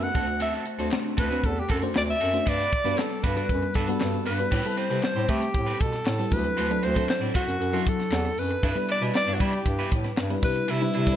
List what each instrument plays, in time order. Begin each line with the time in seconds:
Already playing: fm electric piano A3 B3 D#4 F#4 B4
0.02 alto saxophone F#5, muted clean electric guitar stroke, closed hi-hat
0.14 bass clarinet D2, fm electric piano A3 C4 D4 F#4 C5, clean electric guitar C4 F#4 A4, kick, closed hi-hat
0.27 muted clean electric guitar stroke, closed hi-hat
0.40 clean electric guitar C4 F#4 A4, alto saxophone E5, closed hi-hat
0.53 snare, closed hi-hat
0.66 muted clean electric guitar stroke, closed hi-hat
0.79 bass clarinet D2, fm electric piano A3 C4 D4 F#4 C5, clean electric guitar C4 F#4 A4, closed hi-hat
0.91 snare, clap
1.04 muted clean electric guitar stroke, closed hi-hat
1.17 bass clarinet D2, clean electric guitar C4 F#4 A4, alto saxophone B4, kick, closed hi-hat
1.30 fm electric piano A3 C4 D4 F#4 C5, clean electric guitar C4 F#4 B4, snare, closed hi-hat
1.44 bass clarinet E2, alto saxophone A4, kick, closed hi-hat
1.56 alto saxophone G4, muted clean electric guitar stroke, closed hi-hat
1.68 bass clarinet F#2, clean electric guitar C4 F#4 A4, alto saxophone A4, kick, closed hi-hat
1.81 fm electric piano A3 C4 D4 F#4 C5, muted clean electric guitar stroke, closed hi-hat
1.94 bass clarinet D2, alto saxophone D5, muted clean electric guitar stroke, snare, clap
2.07 alto saxophone E5, muted clean electric guitar stroke
2.20 bass clarinet F#2, clean electric guitar C4 F#4 A4, closed hi-hat
2.33 fm electric piano A3 C4 D4 F#4 C5, muted clean electric guitar stroke, closed hi-hat
2.46 bass clarinet G2, clean electric guitar D4 F#4 B4, alto saxophone D5, kick, closed hi-hat
2.60 snare, closed hi-hat
2.72 muted clean electric guitar stroke, kick, closed hi-hat
2.84 bass clarinet G2, fm electric piano G3 B3 D4 F#4 B4, clean electric guitar D4 F#4 B4, closed hi-hat
2.98 alto saxophone A4, muted clean electric guitar stroke, snare, clap
3.10 muted clean electric guitar stroke, closed hi-hat
3.23 bass clarinet G2, clean electric guitar D4 F#4 B4, alto saxophone B4, kick, closed hi-hat
3.36 fm electric piano G3 B3 D4 F#4 B4, clean electric guitar D4 F#4 D5, closed hi-hat
3.49 bass clarinet F#2, kick, closed hi-hat
3.62 muted clean electric guitar stroke, closed hi-hat
3.74 bass clarinet G2, clean electric guitar D4 F#4 B4, alto saxophone A4, kick, closed hi-hat
3.88 fm electric piano G3 B3 D4 F#4 B4, muted clean electric guitar stroke, closed hi-hat
4.00 bass clarinet G2, muted clean electric guitar stroke, snare, clap
4.13 muted clean electric guitar stroke, closed hi-hat
4.25 bass clarinet G2, clean electric guitar D4 F#4 B4, alto saxophone B4, open hi-hat
4.39 fm electric piano G3 B3 D4 F#4 B4, muted clean electric guitar stroke, closed hi-hat
4.51 bass clarinet A2, clean electric guitar C4 G4 B4, kick, crash
4.64 fm electric piano G3 B3 C4 E4 A4, closed hi-hat
4.77 clean electric guitar C4 G4 B4, alto saxophone C5, closed hi-hat
4.90 bass clarinet C3, fm electric piano G3 B3 C4 E4 A4, clean electric guitar C4 G4 B4, closed hi-hat
5.03 alto saxophone C5, muted clean electric guitar stroke, snare, clap
5.16 bass clarinet A2, clean electric guitar C4 G4 C5
5.28 bass clarinet A3, clean electric guitar C4 G4 B4, alto saxophone G4, kick, closed hi-hat
5.41 muted clean electric guitar stroke, snare, closed hi-hat
5.54 bass clarinet A2, muted clean electric guitar stroke, kick, closed hi-hat
5.66 clean electric guitar C4 G4 B4
5.79 bass clarinet B2, alto saxophone A4, muted clean electric guitar stroke, kick, closed hi-hat
5.92 muted clean electric guitar stroke, snare, closed hi-hat
6.05 bass clarinet A2, muted clean electric guitar stroke, snare, clap
6.18 fm electric piano G3 B3 C4 E4 A4, muted clean electric guitar stroke, closed hi-hat
6.31 bass clarinet D2, fm electric piano F#3 C4 D4 E4 A4, alto saxophone B4, kick, open hi-hat
6.44 muted clean electric guitar stroke, closed hi-hat
6.57 bass clarinet D2, clean electric guitar E4 F#4 C5, closed hi-hat
6.70 fm electric piano F#3 C4 D4 E4 A4, closed hi-hat
6.82 bass clarinet D2, clean electric guitar E4 F#4 C5, alto saxophone C5, closed hi-hat
6.94 fm electric piano F#3 C4 D4 E4 A4, clean electric guitar E4 F#4 C5, kick, closed hi-hat
7.07 alto saxophone C5, muted clean electric guitar stroke, snare, clap
7.21 bass clarinet A2, clean electric guitar E4 F#4 D5
7.34 clean electric guitar E4 F#4 C5, alto saxophone F#4, kick, closed hi-hat
7.47 bass clarinet F#2, muted clean electric guitar stroke, snare, closed hi-hat
7.60 bass clarinet F#2, muted clean electric guitar stroke, closed hi-hat
7.72 fm electric piano F#3 C4 D4 E4 A4, clean electric guitar E4 F#4 C5, closed hi-hat
7.86 alto saxophone A4, muted clean electric guitar stroke, kick, closed hi-hat
8.00 muted clean electric guitar stroke, snare, closed hi-hat
8.11 bass clarinet E2, muted clean electric guitar stroke, snare, clap
8.25 muted clean electric guitar stroke, closed hi-hat
8.37 bass clarinet F#2, alto saxophone B4, open hi-hat
8.50 muted clean electric guitar stroke, closed hi-hat
8.63 bass clarinet G2, clean electric guitar D4 E4 B4, kick, closed hi-hat
8.75 fm electric piano G3 B3 D4 E4 B4
8.89 clean electric guitar D4 E4 B4, alto saxophone D5, closed hi-hat
9.01 bass clarinet B2, fm electric piano G3 B3 D4 E4 B4, clean electric guitar D4 E4 B4, closed hi-hat
9.14 alto saxophone D5, muted clean electric guitar stroke, snare, clap
9.27 bass clarinet G2, clean electric guitar D4 E4 D5
9.34 alto saxophone F#4
9.40 bass clarinet G3, clean electric guitar D4 E4 B4, alto saxophone G4, kick, closed hi-hat
9.53 muted clean electric guitar stroke, closed hi-hat
9.66 bass clarinet G2, muted clean electric guitar stroke, kick, closed hi-hat
9.79 clean electric guitar D4 E4 B4
9.91 bass clarinet A2, muted clean electric guitar stroke, kick, closed hi-hat
10.04 muted clean electric guitar stroke, snare, closed hi-hat
10.17 bass clarinet G2, muted clean electric guitar stroke, snare, clap
10.29 fm electric piano G3 B3 D4 E4 B4, muted clean electric guitar stroke, closed hi-hat
10.42 bass clarinet C3, fm electric piano G3 C4 D4 E4 B4, alto saxophone B4, kick, open hi-hat
10.55 muted clean electric guitar stroke, closed hi-hat
10.68 bass clarinet C3, clean electric guitar D4 E4 B4, alto saxophone E4, closed hi-hat
10.81 fm electric piano G3 C4 D4 E4 B4, snare
10.94 bass clarinet C3, clean electric guitar D4 E4 B4, closed hi-hat
11.06 fm electric piano G3 C4 D4 E4 A4, clean electric guitar D4 E4 B4, kick, closed hi-hat
11.13 fm electric piano B4